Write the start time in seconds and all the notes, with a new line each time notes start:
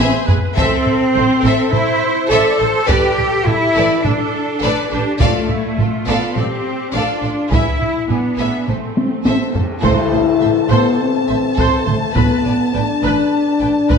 Already playing: C5
0.00 G#4 B4 E5
0.26 A1 G#4 B4, taiko low
0.56 A1 C4 A4 C5 E5, taiko
0.86 taiko low-mid
1.14 A1 E4 A4 C5, taiko low-mid
1.43 A1 A4 C5
1.47 E5
1.72 A1 E4 A4 C5, taiko low-mid
2.30 A1 A4 C5 D5 E5
2.59 A1 A4 C5
2.87 A1 G4 A4 B4 D5, taiko
2.91 G4
3.18 A4, taiko low-mid
3.46 A1 E4 G4 A4, taiko low-mid
3.75 A1 A4 B4 D5
4.04 A1 D4 A4 B4, taiko low-mid
4.62 A1 A4 B4 D5
4.91 A1 D4 G4 A4 B4
5.20 A1 A3 F4 A4 D5 F5, taiko
5.49 E4, taiko low-mid
5.78 A1 F4 A4, taiko low-mid
6.05 A1 B3 A4 D5 F5
6.35 A1 C4 G4 A4 D5, taiko low-mid
6.92 A1 D4 F4 A4 D5 F5
7.22 A1 A4 D5
7.51 A1 E4 G#4 B4 E5, taiko
7.81 taiko low-mid
8.08 A1 B3 D4 E4 G#4, taiko low-mid
8.38 A1 G#4 B4 E5
8.67 A1 A3 C4 A4 C5, taiko low-mid
8.97 taiko high
9.25 A1 A4 C5 E5, taiko high
9.53 A1 A4 C5, taiko low
9.81 A1 A2 E4 A4 C5 A5, taiko, tam-tam
10.11 A1 A2 C5
10.40 A1 A2 C5 E5
10.70 A1 A2 B3 A4 C5
11.01 C4
11.28 A1 A2 C5 E5
11.57 A1 A2 A4 C5, taiko
11.85 A1 A2 A3 C5, taiko mid
12.15 A1 A2 B3 B4, taiko
12.44 A1 A2 B4 D5
12.74 A1 A2 D4 B4 G5
13.02 A1 A2 B4
13.61 A1 A2 B4 G5
13.89 A1 A2 B4, taiko